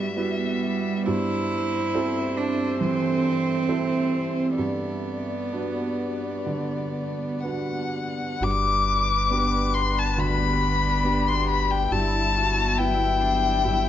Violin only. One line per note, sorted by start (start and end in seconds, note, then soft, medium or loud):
0.00 1.04 E5 soft
1.08 4.55 C5 medium
4.58 7.40 D5 soft
7.45 8.44 F#5 soft
8.43 9.75 D6 medium
9.74 10.00 C6 medium
9.98 10.21 A5 medium
10.20 11.29 B5 medium
11.28 11.49 C6 medium
11.49 11.72 B5 medium
11.71 11.94 G5 medium
11.92 12.80 A5 medium
12.78 13.89 G5 medium